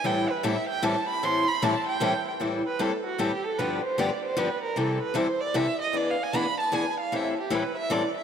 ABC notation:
X:1
M:3/4
L:1/16
Q:"Swing" 1/4=153
K:Am
V:1 name="Violin"
g2 B2 e2 g2 a2 b2 | c'2 b2 a2 g4- g z | z2 B2 A2 ^F2 G2 A2 | B2 c2 d2 c2 B2 _B2 |
A2 B2 c2 d2 e2 ^d2 | (3d2 f2 ^g2 b2 a2 g2 f2 | e2 G2 B2 e2 d2 e2 |]
V:2 name="Steel-string acoustic guitar"
[A,,E,G,CEA]2 z2 [A,,E,G,CEA]2 z2 [A,,E,G,CEA]2 z2 | [A,,E,G,CEA]2 z2 [A,,E,G,CEA]2 z2 [A,,E,G,CEA]2 z2 | [A,,E,G,CEA]2 z2 [A,,E,G,CEA]2 z2 [A,,E,G,CEA]2 z2 | [G,,D,F,B,DG]2 z2 [G,,D,F,B,DG]2 z2 [G,,D,F,B,DG]2 z2 |
[C,E,G,CEA]2 z2 [C,E,G,CEA]2 z2 [C,E,G,CEA]2 z2 | [E,B,D^G]2 z2 [E,B,DG]2 z2 [E,B,DG]2 z2 | [A,,E,G,CEA]2 z2 [A,,E,G,CEA]2 z2 [A,,E,G,CEA]2 z2 |]